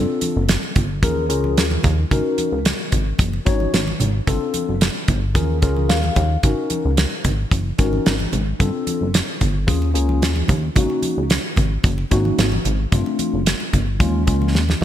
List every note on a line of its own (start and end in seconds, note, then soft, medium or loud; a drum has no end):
0.00 0.41 C4 medium
0.00 0.41 D4 medium
0.00 0.41 F4 medium
0.00 0.41 A4 medium
0.21 closed hi-hat medium
0.21 high conga medium
0.37 0.57 F#1 medium
0.49 snare medium
0.49 closed hi-hat loud
0.63 muted conga soft
0.76 1.04 G1 medium
0.76 kick medium
0.76 closed hi-hat medium
0.76 low conga medium
1.02 1.32 D#2 loud
1.02 1.25 C#4 medium
1.02 1.25 F4 medium
1.02 1.25 G#4 medium
1.02 1.25 A#4 medium
1.02 kick loud
1.02 closed hi-hat medium
1.02 muted conga soft
1.02 high conga medium
1.29 1.59 C#2 loud
1.29 1.64 C#4 medium
1.29 1.64 F4 medium
1.29 1.65 G#4 medium
1.29 1.65 A#4 medium
1.29 closed hi-hat medium
1.44 high conga medium
1.57 1.78 D#2 medium
1.57 snare loud
1.57 closed hi-hat medium
1.71 muted conga soft
1.71 high conga medium
1.83 2.05 D#2 loud
1.83 kick loud
1.83 closed hi-hat medium
1.83 low conga medium
2.11 2.22 G#1 loud
2.11 2.57 C#4 medium
2.11 2.57 D#4 medium
2.11 2.57 F#4 medium
2.11 2.58 A#4 medium
2.11 kick loud
2.11 closed hi-hat medium
2.11 muted conga soft
2.11 low conga medium
2.38 closed hi-hat medium
2.38 high conga medium
2.52 2.73 C#2 medium
2.65 snare loud
2.65 closed hi-hat loud
2.65 muted conga soft
2.92 3.13 G#1 medium
2.92 kick medium
2.92 closed hi-hat medium
2.92 low conga medium
3.19 3.40 F#1 medium
3.19 kick loud
3.19 closed hi-hat medium
3.19 muted conga soft
3.19 high conga medium
3.33 muted conga soft
3.45 3.67 G#1 medium
3.45 3.80 C#4 medium
3.45 3.81 D#4 medium
3.45 3.81 F#4 medium
3.45 3.81 C#5 medium
3.45 kick medium
3.45 closed hi-hat medium
3.60 high conga medium
3.73 3.94 G#1 medium
3.73 snare medium
3.73 closed hi-hat medium
3.88 muted conga soft
3.88 high conga medium
4.00 4.21 G#1 medium
4.00 closed hi-hat medium
4.00 low conga medium
4.27 4.39 G1 loud
4.27 4.73 C4 medium
4.27 4.73 D4 medium
4.27 4.73 F4 medium
4.27 4.74 A4 medium
4.27 kick loud
4.27 closed hi-hat medium
4.27 muted conga soft
4.27 low conga medium
4.54 closed hi-hat medium
4.54 high conga medium
4.69 4.90 F#1 medium
4.81 snare loud
4.81 closed hi-hat loud
4.81 muted conga soft
5.08 5.37 G1 medium
5.08 kick medium
5.08 closed hi-hat medium
5.08 low conga medium
5.35 5.64 D#2 loud
5.35 5.57 C#4 medium
5.35 5.57 F4 medium
5.35 5.57 G#4 medium
5.35 5.58 A#4 medium
5.35 kick loud
5.35 closed hi-hat medium
5.35 muted conga soft
5.35 high conga medium
5.62 5.91 C#2 loud
5.62 5.97 C#4 medium
5.62 5.97 F4 medium
5.62 5.97 G#4 medium
5.62 5.97 A#4 medium
5.62 kick medium
5.62 closed hi-hat medium
5.77 high conga medium
5.89 6.10 D#2 medium
5.89 6.40 F5 medium
5.89 snare loud
5.89 closed hi-hat medium
5.89 muted conga soft
6.04 muted conga soft
6.04 high conga medium
6.16 6.37 D#2 loud
6.16 kick loud
6.16 closed hi-hat medium
6.16 low conga medium
6.43 6.55 G#1 medium
6.43 6.89 C#4 medium
6.43 6.89 D#4 medium
6.43 6.90 F#4 medium
6.43 6.90 A#4 medium
6.43 kick loud
6.43 closed hi-hat medium
6.43 muted conga soft
6.43 low conga medium
6.70 closed hi-hat medium
6.70 high conga medium
6.85 7.06 C#2 medium
6.97 snare medium
6.97 closed hi-hat loud
6.97 muted conga soft
7.24 7.46 G#1 medium
7.24 kick medium
7.24 closed hi-hat medium
7.24 low conga medium
7.51 7.72 F#1 medium
7.51 kick loud
7.51 closed hi-hat medium
7.51 muted conga soft
7.51 high conga medium
7.78 8.00 G#1 loud
7.78 8.13 C#4 medium
7.78 8.13 D#4 medium
7.78 8.13 F#4 medium
7.78 8.14 A#4 medium
7.78 kick medium
7.78 closed hi-hat medium
7.93 high conga medium
8.06 8.27 G#1 loud
8.06 snare loud
8.06 closed hi-hat medium
8.20 high conga medium
8.33 8.54 G#1 medium
8.33 closed hi-hat medium
8.33 low conga medium
8.59 8.71 G1 loud
8.59 9.06 C4 medium
8.59 9.06 D4 medium
8.59 9.06 F4 medium
8.59 9.06 A4 medium
8.59 kick loud
8.59 closed hi-hat loud
8.59 low conga medium
8.87 closed hi-hat medium
8.87 high conga medium
9.01 9.22 F#1 medium
9.14 snare loud
9.14 closed hi-hat loud
9.14 muted conga soft
9.41 9.69 G1 medium
9.41 kick medium
9.41 closed hi-hat medium
9.41 low conga medium
9.67 9.96 D#2 medium
9.67 9.89 A#3 medium
9.67 9.90 C#4 medium
9.67 9.90 F4 medium
9.67 9.90 G#4 medium
9.67 kick loud
9.67 closed hi-hat medium
9.67 high conga medium
9.82 muted conga soft
9.94 10.23 C#2 loud
9.94 10.29 A#3 medium
9.94 10.29 C#4 medium
9.94 10.29 F4 medium
9.94 10.30 G#4 medium
9.94 closed hi-hat medium
10.09 high conga medium
10.22 10.43 D#2 medium
10.22 snare medium
10.22 closed hi-hat medium
10.22 muted conga soft
10.36 muted conga soft
10.36 high conga medium
10.48 10.70 D#2 loud
10.48 kick loud
10.48 closed hi-hat medium
10.48 low conga medium
10.76 10.87 G#1 loud
10.76 11.22 A#3 medium
10.76 11.22 C#4 medium
10.76 11.22 D#4 medium
10.76 11.22 F#4 medium
10.76 kick medium
10.76 closed hi-hat medium
10.76 muted conga soft
10.76 low conga medium
10.90 muted conga soft
11.02 closed hi-hat medium
11.02 high conga medium
11.18 11.39 C#2 medium
11.30 snare loud
11.30 closed hi-hat loud
11.30 muted conga soft
11.56 11.78 G#1 medium
11.56 kick medium
11.56 closed hi-hat medium
11.56 low conga medium
11.84 12.05 F#1 loud
11.84 kick loud
11.84 closed hi-hat medium
11.84 high conga medium
11.98 muted conga soft
12.11 12.32 G#1 medium
12.11 12.46 A#3 medium
12.11 12.46 C#4 medium
12.11 12.46 D#4 medium
12.11 12.46 F#4 loud
12.11 kick medium
12.11 closed hi-hat medium
12.25 high conga medium
12.38 12.59 G#1 medium
12.38 snare loud
12.38 closed hi-hat medium
12.52 muted conga soft
12.52 high conga medium
12.65 12.86 G#1 medium
12.65 closed hi-hat medium
12.65 low conga medium
12.92 13.03 G1 medium
12.92 13.38 A3 medium
12.92 13.38 C4 medium
12.92 13.38 D4 medium
12.92 13.38 F4 medium
12.92 kick medium
12.92 closed hi-hat medium
12.92 low conga medium
13.06 muted conga soft
13.19 closed hi-hat medium
13.19 high conga medium
13.34 13.55 F#1 medium
13.46 snare medium
13.46 closed hi-hat loud
13.60 muted conga soft
13.73 14.02 G1 medium
13.73 kick medium
13.73 closed hi-hat medium
13.73 low conga medium
14.00 14.29 D#2 loud
14.00 14.22 G#3 medium
14.00 14.22 A#3 medium
14.00 14.22 C#4 medium
14.00 14.22 F4 medium
14.00 kick loud
14.00 closed hi-hat medium
14.00 muted conga soft
14.00 high conga medium
14.26 14.56 C#2 loud
14.26 14.61 G#3 medium
14.26 14.62 A#3 medium
14.26 14.62 C#4 medium
14.26 14.62 F4 medium
14.26 kick medium
14.26 closed hi-hat medium
14.42 high conga medium
14.54 14.75 D#2 medium
14.54 snare medium
14.54 muted conga soft
14.69 snare soft
14.69 muted conga soft
14.69 high conga medium
14.81 14.84 D#2 medium
14.81 low conga medium